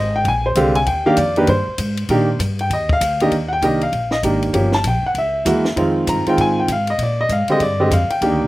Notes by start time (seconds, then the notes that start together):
Already playing: G#1 D#5
0.16 G5
0.25 A#1 G#5, kick, ride
0.46 C5
0.55 C2 D3 G#3 C4 G4 F5, kick, hi-hat pedal, ride
0.75 G#5, ride
0.86 D#2 G5, kick, ride
1.06 D#3 A#3 D4 G4 F5
1.17 F2 D5, kick, hi-hat pedal, ride
1.36 D#3 A#3 D4 G4 B4, ride
1.47 G2 C5, kick, ride
1.68 muted upright bass stroke
1.78 G#2, kick, hi-hat pedal, ride
1.97 ride
2.09 A#2 D#3 A#3 D4 G4, kick, ride
2.39 G2, kick, hi-hat pedal, ride
2.59 G5, ride
2.70 D#2 D#5, kick, ride
2.89 F5, kick
3.01 D2, kick, hi-hat pedal, ride
3.20 D#3 A#3 D4 G4 D#5, ride
3.31 D#2, kick, ride
3.48 F#5
3.53 G5
3.62 C2 D#3 A#3 D4 G4 D#5, kick, hi-hat pedal, ride
3.81 F5, ride
3.92 A#1, kick, ride
4.11 D#5, snare
4.23 G#1 D#3 A#3 D4 G4, kick, hi-hat pedal, ride
4.43 ride
4.53 G1 F3 A#3 C#4 G4, kick, ride
4.72 A5, snare
4.84 A#1 G5, kick, hi-hat pedal, ride
5.03 F#5, muted upright bass stroke
5.14 C#2 E5, kick, ride
5.45 D#2 E3 G#3 A#3 F#4, kick, hi-hat pedal, ride
5.65 snare
5.76 F2 D#3 G#3 C4 F4, kick, ride
6.07 G2 A#5, kick, hi-hat pedal, ride
6.26 D#3 G#3 C4 F4 G5, muted upright bass stroke, ride
6.37 G#2 G#5, kick, ride
6.60 G5
6.68 G#2 F5, kick, hi-hat pedal, ride
6.87 D#5, ride
6.98 A#2, kick, ride
7.03 D5
7.21 D#5
7.29 G#2 F5, kick, hi-hat pedal, ride
7.48 D3 G#3 C4 G4 D#5, muted upright bass stroke, ride
7.60 G2 D5, kick, ride
7.80 D3 G#3 C4 G4 D#5
7.91 F2 F5, kick, hi-hat pedal, ride
8.09 G5, muted upright bass stroke, ride
8.21 D#2 D#3 A#3 D4 G4, kick, ride
8.31 D2
8.41 A#1